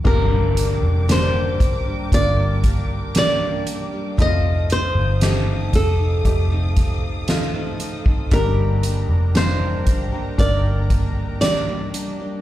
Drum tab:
CC |x---------------|----------------|----------------|
HH |--x-x-x-x-x-x-x-|x-x-x-x-x-x-x-x-|x-x-x-x-x-x-x-x-|
SD |----o-------o---|----o-------o---|----o-------o---|
BD |o-----o-o-o-----|o-----o-o-o----o|o-----o-o-o-----|